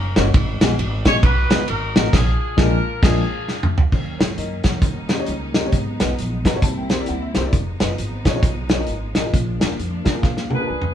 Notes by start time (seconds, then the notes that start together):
Already playing: F#1 A#3 C#4 D#4 A#4
0.16 G1 A#3 C#4 D#4 F#4 C#5, snare, ride bell
0.34 G#1 G#2, kick, ride bell
0.61 A#1 G#3 B3 D#4 F#4 G#4, snare, ride bell
0.79 G#1, ride bell
1.05 A#1 G#3 B3 D#4 F#4 G#4 C#5, kick, snare, ride bell
1.23 B1 D#4 F#4 B4, kick, ride bell
1.50 C#2 G#3 B3 D#4 F#4 G#4, snare, ride bell
1.68 G#1 D#4 F#4 A#4, ride bell
1.95 A1 G#3 B3 D#4 F#4 A#4, snare, ride bell
2.13 A#1 D4 F4 G#4, kick, snare, crash
2.57 A#1 G#3 A#3 D4 F4 G#4 A#4, kick, snare
3.03 A#1 G#3 A#3 D4 F4 G#4, kick, snare, crash
3.48 snare
3.63 mid tom
3.78 floor tom
3.92 D#2 D#3 F#3 A#3 C#4 D#4, kick, crash
4.19 G#2 G#4 C#5, snare, closed hi-hat
4.37 F#2 A#4 D#5, closed hi-hat
4.64 F2 C#5 F#5, kick, snare, closed hi-hat
4.82 D#2 D#3 G3 C#4, kick, closed hi-hat
5.08 C#4 D#4 G4 A#4, snare, closed hi-hat
5.18 C#4 D#4 G4 C#5
5.26 C#2, closed hi-hat
5.54 C#4 D#4 G4 A#4, snare, closed hi-hat
5.64 C#4 D#4 G4 C#5
5.72 G#1 G#2 F#3 G#3 B3, kick, closed hi-hat
6.00 B1 D#4 F#4 G#4 B4, snare, closed hi-hat
6.19 A#1, closed hi-hat
6.45 G#1 D#4 F#4 G#4 B4 A#5, kick, snare, closed hi-hat
6.54 D#4 F#4 G#4 C#5
6.62 C2 C3 G3 A#3 C4 E4 A5, kick, closed hi-hat
6.77 G5
6.89 E4 G4 A#4 C5, snare, closed hi-hat
6.99 E4 G4 A#4 D5
7.06 D2 F#5, closed hi-hat
7.22 E5
7.35 C2 E4 G4 A#4 C5, snare, closed hi-hat
7.44 E4 G4 A#4 D5
7.53 F1 F3 G#3 B3 D#4, kick, closed hi-hat
7.80 F#1 D#4 F4 G#4 B4, snare, closed hi-hat
7.98 G#1, closed hi-hat
8.25 A#1 D#4 F4 G#4 C#5, kick, snare, closed hi-hat
8.35 D#4 F4 G#4 C#5
8.43 B1, kick, closed hi-hat
8.69 D#4 F4 G#4 C#5, snare, closed hi-hat
8.79 D#4 F4 G#4 A#4
8.87 G#1, closed hi-hat
9.15 A1 D#4 F4 G#4 A#4, snare, closed hi-hat
9.24 D#4 F4 G#4 A#4
9.33 A#1 A#2 F3 A#3 D4, kick, closed hi-hat
9.59 D4 F4 G#4 A#4, snare, closed hi-hat
9.79 F2, closed hi-hat
10.04 D#2 D4 F4 G#4 A#4 D5, kick, snare, closed hi-hat
10.14 D4 F4 G#4 A#4
10.22 D2 F5, kick, snare
10.37 snare
10.49 D4 F4 G#4 A#4 F#5, high tom
10.54 B4
10.59 D4 F4 G#4 A#4
10.67 C#2 G#4 D5 G#5
10.82 mid tom